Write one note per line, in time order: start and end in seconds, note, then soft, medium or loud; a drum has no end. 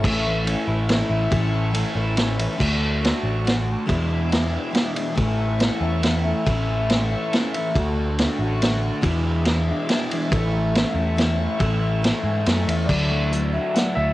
0.02 0.54 A1 loud
0.02 0.46 A2 medium
0.02 0.43 E3 medium
0.02 0.44 A3 medium
0.02 0.45 C#4 medium
0.02 0.45 E4 medium
0.02 2.57 A4 medium
0.02 2.57 E5 medium
0.02 2.57 C#6 medium
0.02 kick loud
0.02 crash loud
0.26 1.09 E3 medium
0.44 0.67 E3 medium
0.44 0.67 A3 medium
0.44 0.66 C#4 medium
0.44 0.65 E4 medium
0.44 ride medium
0.66 1.01 A1 medium
0.66 0.89 A3 soft
0.66 0.88 C#4 medium
0.66 0.88 E4 medium
0.89 1.10 E3 medium
0.89 1.10 A3 medium
0.89 1.08 C#4 medium
0.89 1.08 E4 medium
0.89 snare medium
0.89 ride medium
1.09 1.27 A1 medium
1.09 1.53 E3 medium
1.09 1.30 A3 soft
1.09 1.29 C#4 medium
1.09 1.31 E4 medium
1.30 1.83 A1 medium
1.30 1.74 A2 medium
1.30 1.70 E3 medium
1.30 1.72 A3 medium
1.30 1.73 C#4 medium
1.30 1.73 E4 medium
1.30 kick medium
1.30 ride medium
1.54 2.36 E3 medium
1.71 1.94 E3 medium
1.71 1.94 A3 medium
1.71 1.93 C#4 medium
1.71 1.93 E4 medium
1.71 ride medium
1.94 2.46 A1 medium
1.94 2.15 A3 soft
1.94 2.15 C#4 soft
1.94 2.16 E4 medium
2.16 2.38 E3 medium
2.16 2.38 A3 medium
2.16 2.38 C#4 medium
2.16 2.37 E4 medium
2.16 snare medium
2.16 ride medium
2.37 2.56 E3 medium
2.37 2.57 A3 soft
2.37 2.61 C#4 soft
2.37 2.59 E4 medium
2.37 ride medium
2.58 3.11 D2 medium
2.58 3.00 D3 medium
2.58 3.00 A3 medium
2.58 3.87 D4 medium
2.58 3.02 F#4 medium
2.58 3.88 F#4 medium
2.58 3.87 D5 medium
2.58 3.87 C#6 medium
2.58 kick loud
2.58 crash medium
3.01 3.43 D3 medium
3.01 3.44 A3 medium
3.01 3.45 F#4 medium
3.01 ride medium
3.05 snare medium
3.23 3.74 A1 medium
3.45 3.86 D3 medium
3.45 3.86 A3 medium
3.45 3.88 F#4 medium
3.45 snare medium
3.45 ride medium
3.86 4.30 E2 medium
3.86 4.56 E2 medium
3.86 4.31 B2 medium
3.86 4.29 E3 medium
3.86 4.29 G#3 medium
3.86 4.30 D4 medium
3.86 4.31 E4 medium
3.86 5.16 G#4 medium
3.86 7.70 E5 medium
3.86 5.16 D6 medium
3.86 kick loud
3.86 ride medium
4.29 4.52 E3 medium
4.29 4.51 G#3 medium
4.29 4.50 D4 medium
4.29 4.50 E4 medium
4.29 snare medium
4.29 ride medium
4.51 4.70 E3 soft
4.51 4.72 G#3 soft
4.51 4.71 D4 soft
4.51 4.72 E4 medium
4.71 4.93 E3 medium
4.71 4.92 G#3 medium
4.71 4.93 D4 medium
4.71 4.91 E4 medium
4.71 ride medium
4.75 snare medium
4.92 5.13 E3 soft
4.92 5.15 G#3 soft
4.92 5.15 D4 soft
4.92 5.14 E4 soft
4.92 ride medium
5.15 5.68 A1 medium
5.15 5.59 A2 medium
5.15 5.57 E3 medium
5.15 5.59 A3 medium
5.15 5.59 C#4 medium
5.15 5.59 E4 medium
5.15 7.71 A4 medium
5.15 8.98 C#6 medium
5.15 kick loud
5.15 ride medium
5.20 6.46 E4 medium
5.58 5.81 E3 medium
5.58 5.81 A3 medium
5.58 5.81 C#4 medium
5.58 5.81 E4 medium
5.58 snare medium
5.58 ride medium
5.81 6.32 E2 medium
5.81 6.02 A3 soft
5.81 6.02 C#4 soft
5.81 6.02 E4 medium
6.02 6.24 E3 medium
6.02 6.24 A3 medium
6.02 6.23 C#4 medium
6.02 6.22 E4 medium
6.02 snare medium
6.02 ride medium
6.23 6.45 A3 soft
6.23 6.45 C#4 soft
6.23 6.45 E4 medium
6.45 7.14 A1 medium
6.45 6.88 A2 medium
6.45 6.89 E3 medium
6.45 6.90 A3 medium
6.45 6.91 C#4 medium
6.45 6.89 E4 medium
6.45 kick loud
6.45 ride medium
6.90 7.11 E3 medium
6.90 7.11 A3 medium
6.90 7.11 C#4 medium
6.90 7.10 E4 medium
6.90 snare medium
6.90 ride medium
7.11 7.32 A3 soft
7.11 7.32 C#4 medium
7.11 7.32 E4 medium
7.33 7.54 E3 medium
7.33 7.54 A3 medium
7.33 7.54 C#4 medium
7.33 7.53 E4 medium
7.33 snare medium
7.33 ride medium
7.54 7.75 A3 soft
7.54 7.76 C#4 soft
7.54 7.75 E4 soft
7.54 ride medium
7.74 8.26 D2 loud
7.74 8.18 D3 medium
7.74 8.18 A3 medium
7.74 9.03 D4 medium
7.74 9.02 F#4 medium
7.74 8.19 F#4 medium
7.74 9.02 D5 medium
7.74 kick loud
7.74 ride medium
8.18 8.39 D3 medium
8.18 8.40 A3 medium
8.18 8.40 C#4 medium
8.18 8.41 F#4 medium
8.18 snare medium
8.18 ride medium
8.39 8.90 A1 medium
8.39 8.62 C#4 medium
8.39 8.62 F#4 medium
8.43 8.61 A3 soft
8.61 9.02 D3 medium
8.61 9.02 A3 medium
8.61 9.02 F#4 medium
8.61 snare medium
8.61 ride medium
9.01 9.45 E2 medium
9.01 9.71 E2 medium
9.01 9.45 B2 medium
9.01 9.45 E3 medium
9.01 9.45 G#3 medium
9.01 9.45 D4 medium
9.01 9.47 E4 medium
9.01 10.31 G#4 medium
9.01 12.86 E5 medium
9.01 10.31 D6 medium
9.01 kick loud
9.01 ride medium
9.45 9.67 E3 medium
9.45 9.67 G#3 medium
9.45 9.68 D4 medium
9.45 9.67 E4 medium
9.45 snare medium
9.45 ride medium
9.68 9.90 E3 soft
9.68 9.90 G#3 soft
9.68 9.90 D4 soft
9.68 9.89 E4 medium
9.89 10.11 E3 medium
9.89 10.12 G#3 medium
9.89 10.11 D4 medium
9.89 snare medium
9.89 ride medium
9.94 10.09 E4 medium
10.11 10.31 E3 soft
10.11 10.32 G#3 soft
10.11 10.32 D4 soft
10.11 10.32 E4 medium
10.11 ride medium
10.31 10.82 A1 medium
10.31 10.74 A2 medium
10.31 10.75 E3 medium
10.31 10.75 A3 medium
10.31 10.75 C#4 medium
10.31 10.76 E4 medium
10.31 12.87 A4 medium
10.31 12.88 C#6 medium
10.31 kick loud
10.31 ride medium
10.75 10.96 E3 medium
10.75 10.97 A3 medium
10.75 10.96 C#4 medium
10.75 10.95 E4 medium
10.75 snare medium
10.75 ride medium
10.94 11.46 E2 medium
10.94 11.16 A3 soft
10.94 11.16 C#4 soft
10.94 11.17 E4 medium
11.16 11.38 E3 medium
11.16 11.39 A3 medium
11.16 11.38 C#4 medium
11.16 11.38 E4 medium
11.16 snare medium
11.16 ride medium
11.39 11.59 A3 soft
11.39 11.60 C#4 medium
11.39 11.59 E4 medium
11.59 12.11 A1 medium
11.59 12.03 A2 medium
11.59 12.01 E3 medium
11.59 12.02 A3 medium
11.59 12.02 C#4 medium
11.59 12.03 E4 medium
11.59 kick medium
11.59 ride medium
12.02 12.44 E3 medium
12.02 12.45 A3 medium
12.02 12.45 C#4 medium
12.02 12.46 E4 medium
12.02 snare medium
12.02 ride medium
12.23 12.43 G#2 medium
12.46 12.66 F#2 medium
12.46 12.68 E3 medium
12.46 12.68 A3 medium
12.46 12.68 C#4 medium
12.46 12.67 E4 medium
12.46 snare medium
12.46 ride medium
12.67 12.87 E2 medium
12.67 12.87 A3 soft
12.67 12.89 C#4 soft
12.67 12.88 E4 medium
12.67 ride medium
12.86 13.57 D2 loud
12.86 13.32 D3 medium
12.86 13.31 F#3 medium
12.86 13.30 A3 medium
12.86 13.76 D5 medium
12.86 kick loud
12.86 crash medium
12.90 13.31 D4 medium
12.90 13.33 E4 medium
12.90 14.13 E4 medium
12.90 14.13 D5 medium
12.90 14.13 F#5 medium
13.10 13.95 A3 medium
13.31 13.53 F#3 medium
13.31 13.53 A3 medium
13.31 13.53 D4 medium
13.31 13.51 E4 medium
13.31 closed hi-hat medium
13.52 14.13 F#3 medium
13.52 13.74 A3 soft
13.52 13.76 D4 soft
13.52 13.75 E4 medium
13.74 14.13 F#3 medium
13.74 14.13 A3 medium
13.74 14.13 D4 medium
13.74 14.13 E4 medium
13.74 13.95 F#5 medium
13.74 snare medium
13.74 closed hi-hat medium
13.95 14.13 D2 medium
13.95 14.13 A3 medium
13.95 14.13 E5 loud